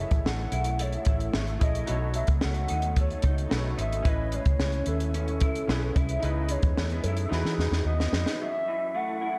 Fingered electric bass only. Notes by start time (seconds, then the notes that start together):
0.12 A1
0.25 A1
0.52 B1
1.07 A1
1.34 G#1
1.62 A#1
1.89 B1
2.29 C#2
2.44 C#2
2.71 D#2
3.24 C#2
3.52 B1
3.78 G#1
4.05 A1
4.46 C#2
4.59 C#2
4.87 D#2
5.42 C#2
5.68 B1
5.96 C2
6.23 C#2
6.63 E2
6.77 E2
7.04 F#2
7.31 E2
7.45 E3
7.58 E2
7.71 E2
7.85 D#2
8.12 F2